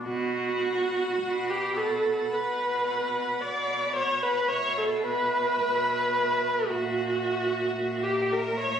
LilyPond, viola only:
\new Staff \with { instrumentName = "Viola" } { \time 4/4 \key b \minor \tempo 4 = 55 fis'4~ fis'16 g'16 a'8 b'4 d''8 cis''16 b'16 | cis''16 a'16 b'4. fis'4~ fis'16 g'16 ais'16 cis''16 | }